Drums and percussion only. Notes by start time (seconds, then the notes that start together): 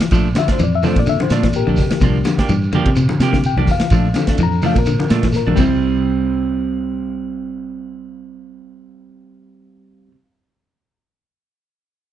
0.00 snare, ride bell, shekere
0.11 kick, ride bell, shekere
0.25 shekere
0.35 snare, ride bell, high conga, shekere
0.48 kick, snare, ride bell, shekere
0.59 ride bell, shekere
0.72 shekere
0.83 open hi-hat, high conga, low conga, shekere
0.96 kick, ride bell
1.06 ride bell, low conga, shekere
1.19 high conga, shekere
1.30 snare, ride bell, shekere
1.43 kick, snare, ride bell
1.53 ride bell, shekere
1.67 high conga, shekere
1.76 kick, open hi-hat, low conga, shekere
1.90 snare, ride bell, shekere
2.00 kick, ride bell, shekere
2.14 shekere
2.24 snare, ride bell, high conga, shekere
2.38 kick, snare, ride bell, shekere
2.49 ride bell, shekere
2.62 shekere
2.72 ride bell, high conga, low conga, shekere
2.86 kick, ride bell
2.96 ride bell, low conga, shekere
3.09 high conga, shekere
3.20 snare, ride bell, shekere
3.33 kick, snare, shekere
3.44 ride bell, shekere
3.57 high conga, shekere
3.67 kick, open hi-hat, low conga, shekere
3.80 snare, ride bell, shekere
3.90 kick, ride bell, shekere
4.04 shekere
4.14 snare, ride bell, high conga, shekere
4.27 kick, snare, ride bell, shekere
4.38 ride bell, shekere
4.52 shekere
4.62 open hi-hat, high conga, low conga, shekere
4.75 kick, ride bell, shekere
4.86 ride bell, shekere
4.99 high conga, shekere
5.09 snare, ride bell, shekere
5.22 kick, snare, ride bell, shekere
5.32 snare, shekere
5.46 mid tom, high conga, shekere
5.57 kick, crash, low conga, shekere